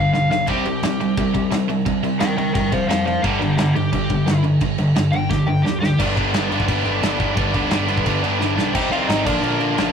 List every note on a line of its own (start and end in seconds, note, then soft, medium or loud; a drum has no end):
0.00 0.11 G2 medium
0.00 0.12 D3 medium
0.00 0.12 F5 medium
0.12 0.39 B1 loud
0.12 0.29 G2 medium
0.12 0.29 D3 medium
0.12 0.30 F5 medium
0.12 snare medium
0.31 0.46 G2 medium
0.31 0.46 D3 medium
0.31 0.48 F5 medium
0.31 snare medium
0.47 0.61 C2 medium
0.47 0.64 C3 medium
0.47 0.64 G3 loud
0.47 0.65 C4 loud
0.47 1.48 G4 loud
0.47 kick loud
0.47 crash medium
0.65 0.78 C2 medium
0.65 0.81 C3 medium
0.65 0.81 G3 medium
0.65 crash medium
0.82 0.96 C2 medium
0.82 0.99 C3 medium
0.82 0.99 G3 medium
0.82 snare loud
0.82 crash medium
1.00 1.14 C2 medium
1.00 1.16 C3 medium
1.00 1.16 G3 medium
1.00 crash medium
1.17 1.44 C2 medium
1.17 1.33 C3 medium
1.17 1.33 G3 medium
1.17 kick loud
1.17 crash medium
1.34 1.50 C3 medium
1.34 1.50 G3 medium
1.34 kick medium
1.34 crash medium
1.51 1.78 C2 loud
1.51 1.67 C3 medium
1.51 1.67 G3 loud
1.51 snare loud
1.51 crash medium
1.69 1.84 C3 medium
1.69 1.84 G3 medium
1.69 crash medium
1.86 2.00 C2 loud
1.86 2.02 C3 medium
1.86 2.02 G3 medium
1.86 kick loud
1.86 crash medium
2.03 2.17 C2 medium
2.03 2.19 C3 medium
2.03 2.19 G3 medium
2.03 crash medium
2.19 2.33 C2 loud
2.19 2.36 C3 medium
2.19 2.36 G3 medium
2.19 2.36 A#4 medium
2.19 2.37 G5 loud
2.19 snare loud
2.19 crash medium
2.37 2.51 C2 loud
2.37 2.54 C3 medium
2.37 2.54 G3 medium
2.37 2.54 A#4 medium
2.37 2.53 G5 medium
2.37 crash medium
2.54 2.69 G2 loud
2.54 2.71 C3 medium
2.54 2.71 G3 medium
2.54 2.71 A#4 medium
2.54 2.74 G5 medium
2.54 kick loud
2.54 crash medium
2.72 2.86 C2 medium
2.72 2.88 C3 medium
2.72 2.88 G3 medium
2.72 2.87 C5 medium
2.72 2.88 F5 medium
2.72 kick medium
2.72 crash medium
2.88 3.16 F1 loud
2.88 3.04 C3 medium
2.88 3.04 G3 medium
2.88 3.05 C5 medium
2.88 3.05 F5 loud
2.88 snare loud
2.88 crash medium
3.05 3.22 C3 medium
3.05 3.22 G3 medium
3.05 3.23 C5 medium
3.05 3.23 F5 medium
3.05 crash medium
3.23 3.38 G1 medium
3.23 3.40 G2 loud
3.23 3.40 D3 loud
3.23 3.40 G3 loud
3.23 3.39 B3 medium
3.23 3.40 G4 loud
3.23 kick loud
3.23 crash medium
3.40 3.54 G1 medium
3.40 3.57 G2 medium
3.40 3.57 D3 medium
3.40 3.56 B3 medium
3.40 3.56 G4 loud
3.40 crash medium
3.57 3.72 G1 medium
3.57 3.74 G2 medium
3.57 3.74 D3 medium
3.57 3.74 B3 medium
3.57 3.74 G4 medium
3.57 snare loud
3.57 crash medium
3.75 3.89 G1 loud
3.75 3.91 G2 medium
3.75 3.91 D3 medium
3.75 4.42 G4 loud
3.75 crash medium
3.92 4.19 G1 loud
3.92 4.08 G2 medium
3.92 4.09 D3 medium
3.92 kick loud
3.92 crash medium
4.10 4.26 G2 medium
4.10 4.26 D3 medium
4.10 kick medium
4.10 crash medium
4.27 4.54 G1 loud
4.27 4.42 G2 medium
4.27 4.43 D3 loud
4.27 snare loud
4.27 crash medium
4.43 4.60 G2 medium
4.43 4.60 D3 medium
4.43 crash medium
4.61 4.74 G1 loud
4.61 4.77 G2 medium
4.61 4.77 D3 medium
4.61 kick loud
4.61 crash medium
4.78 4.92 G1 medium
4.78 4.94 G2 medium
4.78 4.94 D3 medium
4.78 crash medium
4.95 5.10 G1 loud
4.95 5.11 G2 medium
4.95 5.12 D3 medium
4.95 snare loud
4.95 crash medium
5.12 5.27 G1 medium
5.12 5.29 G2 medium
5.12 5.29 D3 medium
5.12 5.29 G5 loud
5.12 crash medium
5.30 5.44 D2 medium
5.30 5.46 G2 medium
5.30 5.46 D3 medium
5.30 5.47 G4 medium
5.30 kick loud
5.30 snare medium
5.47 5.61 G1 medium
5.47 5.63 G2 medium
5.47 5.63 D3 medium
5.47 5.64 G5 loud
5.63 5.91 D2 medium
5.63 5.81 G2 medium
5.63 5.81 D3 medium
5.63 5.79 G4 medium
5.63 snare medium
5.80 5.97 G2 medium
5.80 5.98 D3 medium
5.80 5.98 G4 loud
5.80 snare medium
5.98 6.16 G1 loud
5.98 6.16 G2 medium
5.98 6.15 D3 loud
5.98 6.16 G3 loud
5.98 6.16 B3 medium
5.98 6.17 D4 loud
5.98 kick loud
5.98 crash loud
5.98 crash medium
6.16 6.33 G2 medium
6.16 6.32 G2 medium
6.16 6.33 D3 loud
6.16 6.34 G3 loud
6.16 6.34 B3 loud
6.16 6.35 D4 medium
6.16 kick medium
6.16 crash medium
6.32 6.50 G1 loud
6.32 6.51 G2 medium
6.32 6.50 D3 loud
6.32 6.52 G3 loud
6.32 6.52 B3 loud
6.32 6.53 D4 loud
6.32 snare loud
6.32 crash loud
6.51 6.67 G2 loud
6.51 6.66 G2 medium
6.51 6.67 D3 medium
6.51 6.68 G3 loud
6.51 6.68 B3 medium
6.51 6.68 D4 medium
6.51 crash medium
6.60 kick medium
6.68 6.84 G1 loud
6.68 6.83 G2 loud
6.68 6.84 D3 loud
6.68 6.84 G3 loud
6.68 6.84 B3 loud
6.68 6.84 D4 loud
6.68 kick loud
6.68 crash medium
6.84 7.01 G1 medium
6.84 7.01 G2 medium
6.84 7.01 D3 medium
6.84 7.03 G3 medium
6.84 7.02 B3 medium
6.84 7.03 D4 loud
6.84 crash medium
7.02 7.19 G1 loud
7.02 7.17 G2 loud
7.02 7.17 D3 loud
7.02 7.18 G3 loud
7.02 7.18 B3 loud
7.02 7.19 D4 loud
7.02 snare loud
7.02 crash medium
7.18 7.36 G1 loud
7.18 7.34 G2 medium
7.18 7.35 D3 medium
7.18 7.35 G3 loud
7.18 7.35 B3 medium
7.18 7.36 D4 loud
7.18 kick medium
7.18 crash medium
7.35 7.53 G1 loud
7.35 7.52 G2 loud
7.35 7.52 D3 loud
7.35 7.53 G3 loud
7.35 7.53 B3 loud
7.35 7.53 D4 loud
7.35 kick loud
7.35 crash medium
7.53 7.71 D2 medium
7.53 7.69 G2 medium
7.53 7.69 D3 loud
7.53 7.70 G3 loud
7.53 7.70 B3 loud
7.53 7.71 D4 loud
7.53 kick medium
7.53 crash medium
7.70 8.04 G1 loud
7.70 7.86 G2 loud
7.70 7.86 D3 loud
7.70 7.87 G3 medium
7.70 7.87 B3 loud
7.70 7.88 D4 loud
7.70 snare loud
7.70 crash medium
7.87 8.03 G2 loud
7.87 8.04 D3 medium
7.87 8.04 G3 loud
7.87 8.04 B3 medium
7.87 8.05 D4 medium
7.87 crash medium
7.97 kick medium
8.04 8.22 G1 loud
8.04 8.21 G2 loud
8.04 8.21 D3 medium
8.04 8.22 G3 loud
8.04 8.22 B3 loud
8.04 8.22 D4 loud
8.04 kick loud
8.04 crash medium
8.22 8.38 G2 medium
8.22 8.39 G2 medium
8.22 8.38 D3 medium
8.22 8.39 G3 medium
8.22 8.39 B3 loud
8.22 8.39 D4 loud
8.22 crash medium
8.39 8.56 G1 medium
8.39 8.55 G2 loud
8.39 8.55 D3 loud
8.39 8.56 G3 loud
8.39 8.56 B3 loud
8.39 8.56 D4 loud
8.39 snare medium
8.56 8.74 B1 medium
8.56 8.73 G2 medium
8.56 8.73 D3 medium
8.56 8.73 G3 medium
8.56 8.73 B3 medium
8.56 8.73 D4 loud
8.56 snare loud
8.74 8.89 C2 loud
8.74 8.90 C3 medium
8.74 8.91 G3 loud
8.74 8.91 C4 loud
8.74 8.91 D#4 loud
8.74 8.91 G4 medium
8.74 8.92 G5 medium
8.74 kick loud
8.74 crash loud
8.74 crash medium
8.90 9.07 C2 medium
8.90 9.08 C3 loud
8.90 9.08 G3 medium
8.90 9.08 C4 loud
8.90 9.09 D#4 loud
8.90 9.08 F4 medium
8.90 9.08 F5 medium
8.90 crash medium
9.08 9.24 G#1 loud
9.08 9.25 C3 medium
9.08 9.25 G3 medium
9.08 9.25 C4 medium
9.08 9.25 D#4 medium
9.08 9.25 D#4 loud
9.08 9.25 D#5 medium
9.08 snare loud
9.08 crash loud
9.25 9.41 A#1 loud
9.25 9.42 A#2 loud
9.25 9.42 D3 loud
9.25 9.43 F3 loud
9.25 9.43 A#3 loud
9.25 9.43 D4 loud
9.25 9.91 D4 medium
9.25 9.92 D5 medium
9.25 kick loud
9.25 crash loud
9.42 9.75 A#1 medium
9.42 9.58 A#2 medium
9.42 9.59 D3 medium
9.42 9.59 F3 medium
9.42 9.59 A#3 medium
9.42 9.59 D4 medium
9.42 crash medium
9.60 9.76 A#2 medium
9.60 9.76 D3 medium
9.60 9.77 F3 medium
9.60 9.77 A#3 medium
9.60 9.77 D4 medium
9.60 crash medium
9.76 9.92 A#1 loud
9.76 9.92 A#2 loud
9.76 9.92 D3 loud
9.76 9.92 F3 loud
9.76 9.92 A#3 loud
9.76 9.92 D4 loud
9.76 snare loud
9.76 crash medium